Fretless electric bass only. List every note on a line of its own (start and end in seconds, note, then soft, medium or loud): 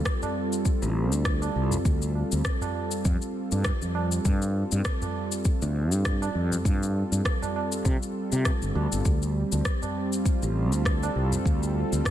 0.82 1.12 A1 medium
1.12 1.48 D2 medium
1.56 1.76 C2 medium
1.85 2.22 D2 medium
2.32 2.41 D2 medium
3.05 3.16 F2 loud
3.52 3.70 G2 medium
3.82 4.18 F2 medium
4.25 4.62 G2 medium
4.72 4.81 G2 medium
5.62 5.92 D2 medium
5.92 6.28 G2 medium
6.35 6.56 F2 medium
6.65 7.02 G2 medium
7.12 7.20 G2 medium
7.85 7.96 C3 medium
8.32 8.50 C3 medium
8.62 8.71 G1 medium
8.75 8.86 D2 medium
8.92 9.01 G1 medium
9.05 9.42 D2 medium
9.52 9.61 D2 medium
10.43 10.72 A1 medium
10.72 11.08 D2 medium
11.16 11.36 C2 medium
11.46 11.82 D2 medium
11.92 12.01 D2 medium